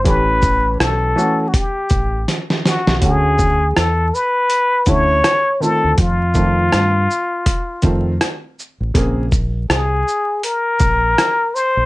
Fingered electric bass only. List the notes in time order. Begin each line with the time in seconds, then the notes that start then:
0.06 A1
0.80 B1
1.91 A1
2.87 B1
3.02 D2
3.77 E2
4.87 D2
5.84 D2
5.99 F2
6.74 G2
7.84 F2
8.80 A1
8.95 A#1
9.70 C2
10.81 A#1
11.77 A#1